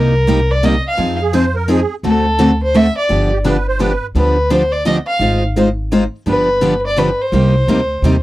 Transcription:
Already playing: C2 C3 G3 A#3 D#4 G4 A#4
0.28 C3 G3 A#3 D#4 G4
0.51 D5
0.63 C3 G3 A#3 D#4 G4 D#5
0.87 F5
0.97 F2 F3 C4 D#4 G#4
1.21 G#4
1.33 F3 C4 D#4 G#4 C5
1.55 A#4
1.68 F3 C4 D#4 G#4
2.03 D2 D3 A3 C4 F#4 A4
2.39 D3 A3 C4 F#4 A4
2.63 C5
2.75 D3 A3 C4 F#4 A4 E5
2.97 D5
3.09 G1 D3 F3 B3 D4 G4
3.32 G4
3.44 D3 F3 B3 D4 G4 B4
3.68 C5
3.79 D3 F3 B3 D4 G4 B4
4.15 D2 D3 F3 B3 D4 G4 B4
4.50 D3 F3 B3 D4 G4 C5
4.72 D5
4.85 D3 F3 B3 D4 G4 D#5
5.06 F5
5.19 G#1 G#3 D#4 F4 C5
5.56 G#3 D#4 F4 C5
5.92 G#3 D#4 F4 C5
6.26 G1 D3 F3 B3 D4 G4 B4
6.61 D3 F3 B3 D4 G4
6.87 D5
6.97 D3 F3 B3 D4 G4 B4
7.21 C5
7.32 C2 C3 G3 A#3 D#4 G4
7.67 D2 C3 G3 A#3 D#4 G4
8.02 D#2 C3 G3 A#3 D#4 G4

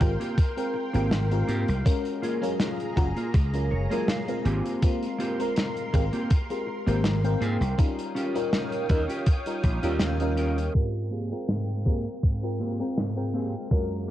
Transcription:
Already playing: A#4 F5 G5 C6
0.00 G#1 G#3 C4 F4 G4 A#4, muted clean electric guitar stroke, kick, closed hi-hat
0.20 A#3 C4 F4 G4, closed hi-hat
0.38 kick, closed hi-hat
0.57 G#3 C4 F4 A#4 G5, closed hi-hat
0.74 muted clean electric guitar stroke
0.93 G#1 G#3 A#3 C4 F4 G4 A#4 G5, closed hi-hat
1.12 snare, closed hi-hat
1.31 G#3 C4 F4 G4 A#4, closed hi-hat
1.48 G#2 A#3 C4 F4 G4, closed hi-hat
1.69 C2, closed hi-hat
1.85 G#3 C#4 F4 F#4 G#4 A#4 A#5, kick, closed hi-hat
2.05 closed hi-hat
2.22 A#3 F4 G#4, closed hi-hat
2.42 F#3 G#3 C#4 F4 A#4, closed hi-hat
2.60 snare, closed hi-hat
2.80 closed hi-hat
2.96 F#1 G#3 C#4 F4 F#4 A#4, muted clean electric guitar stroke, kick, closed hi-hat
3.16 A#3 F4 A#4, closed hi-hat
3.34 C#2, kick, closed hi-hat
3.53 F#3 G#3 C#4 F4 A#4, closed hi-hat
3.71 F#1 C#5, muted clean electric guitar stroke
3.90 F#3 G#3 A#3 C#4 F4 G#4 A#4, closed hi-hat
4.08 F5, snare, closed hi-hat
4.27 G#3 C4 F4 A#4, closed hi-hat
4.44 G#1 A#3 C4 F4 G4 A#4 G#5 C6, closed hi-hat
4.65 closed hi-hat
4.82 G#3 C4 F4 A#4, kick, closed hi-hat
5.03 closed hi-hat
5.18 A#3 C4 F4 G4, closed hi-hat
5.39 G#3 C4 F4 A#4, closed hi-hat
5.56 snare, closed hi-hat
5.77 closed hi-hat
5.92 G#1 G#3 C4 F4 G4 A#4, muted clean electric guitar stroke, kick, closed hi-hat
6.12 A#3 C4 F4 G4, closed hi-hat
6.30 kick, closed hi-hat
6.50 G#3 C4 F4 G4 A#4, closed hi-hat
6.67 muted clean electric guitar stroke
6.86 G#1 G#3 A#3 C4 F4 G4 A#4, closed hi-hat
7.04 snare, closed hi-hat
7.24 G#3 C4 F4 A#4 G5, closed hi-hat
7.41 G#2 A#3 C4 F4 G#4, closed hi-hat
7.61 C2, closed hi-hat
7.78 G3 C#4 D#4 F4 A#4 C#5 F5 G5 D#6, kick, closed hi-hat
7.99 closed hi-hat
8.15 C#4 F4 G4, closed hi-hat
8.34 G3 C#4 D#4 F4 A#4, closed hi-hat
8.53 snare, closed hi-hat
8.72 closed hi-hat
8.89 D#2 G3 C#4 D#4 F4 A#4, muted clean electric guitar stroke, kick, closed hi-hat
9.08 C#4 F4 G4, closed hi-hat
9.26 kick, closed hi-hat
9.46 G3 C#4 D#4 F4 A#4, closed hi-hat
9.63 A#1, muted clean electric guitar stroke, kick, closed hi-hat
9.82 D#2 G3 C#4 D#4 F4 G4 A#4, closed hi-hat
10.00 snare, closed hi-hat
10.20 G3 C#4 D#4 F4 A#4, closed hi-hat
10.37 C#4 F4 A#4, closed hi-hat
10.58 closed hi-hat
10.74 G#2 G#3 C4 F4 G4 A#4 F5 G5, kick
11.11 A#3 C4 F4 G4 G#4
11.31 G#3 C4 F4 A#4 G5
11.49 G#2, snare
11.85 G#3 A#3 C4 F4 G4 G#4 A#4, kick
12.23 G#2, kick
12.42 G#3 C4 F4 A#4 G5
12.59 A#3 C4 F4 G4 A#4
12.79 G#3 C4 F4 A#4 G5
12.97 G#2, snare
13.16 G#3 C4 F4 A#4 G5
13.33 A#3 C4 F4 G4 G#4
13.70 F#2 F#3 G#3 A#3 C#4 F4 F#4 A#4, kick
14.08 A#3

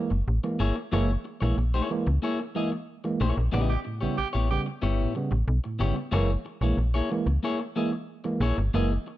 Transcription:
0.10 F#1, muted clean electric guitar stroke
0.28 A1
0.44 E3 G#3 A#3, muted clean electric guitar stroke
0.59 G1 A#3 E4 G#4 C#5
0.76 muted clean electric guitar stroke
0.92 F#1 E3 G#3 A#3 E4 G#4 C#5
1.25 muted clean electric guitar stroke
1.41 A#1 E3 G#3 A#3 E4 G#4 C#5
1.57 A#1, muted clean electric guitar stroke
1.74 A#3 E4 G#4 C#5
1.90 E3 G#3 A#3, muted clean electric guitar stroke
2.07 C#2, muted clean electric guitar stroke
2.22 G#3 A#3 E4 G#4 C#5
2.40 muted clean electric guitar stroke
2.55 E3 G#3 A#3 E4 G#4 D#5
2.72 muted clean electric guitar stroke
3.04 E3 G#3 A#3, muted clean electric guitar stroke
3.20 A#1 A#3 E4 G#4 C#5
3.36 A#1, muted clean electric guitar stroke
3.52 A1 C#3 G3 B3 E4 G4 D#5
3.70 G4
3.85 A2, muted clean electric guitar stroke
4.01 A1 C#3 G3 B3 E4 G4 C#5
4.17 A1 G4, muted clean electric guitar stroke
4.33 A1 B3 E4 G4 C#5
4.50 C#3 G3 B3 G4, muted clean electric guitar stroke
4.66 muted clean electric guitar stroke
4.82 G1 G3 B3 E4 G4 C#5
5.00 A2
5.15 C#3 G3 B3, muted clean electric guitar stroke
5.31 A1, muted clean electric guitar stroke
5.48 B1 G3 B3
5.64 A2, muted clean electric guitar stroke
5.79 G1 C#3 G3 B3 E4 G4 C#5
5.96 muted clean electric guitar stroke
6.11 F#1 E3 G#3 A#3 E4 G#4 C#5
6.45 muted clean electric guitar stroke
6.61 A#1 E3 G#3 A#3 E4 G#4 C#5
6.77 A#1, muted clean electric guitar stroke
6.94 A#3 E4 G#4 C#5
7.10 E3 G#3 A#3, muted clean electric guitar stroke
7.26 C#2, muted clean electric guitar stroke
7.43 G#3 A#3 E4 G#4 C#5
7.60 muted clean electric guitar stroke
7.76 E3 G#3 A#3 E4 G#4 D#5
7.92 muted clean electric guitar stroke
8.24 E3 G#3 A#3, muted clean electric guitar stroke
8.40 A#1 A#3 E4 G#4 C#5
8.58 G1, muted clean electric guitar stroke
8.74 F#1 E3 G#3 A#3 E4 G#4 D#5
9.07 muted clean electric guitar stroke

